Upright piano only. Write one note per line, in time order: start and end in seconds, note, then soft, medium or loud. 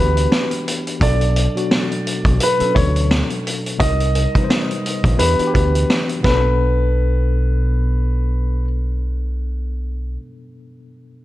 0.00 0.49 B4 medium
1.02 2.37 D5 medium
2.43 2.73 B4 medium
2.75 3.07 C#5 medium
3.80 5.15 D#5 loud
5.19 5.51 B4 medium
5.54 6.06 B4 medium
6.25 8.65 B4 medium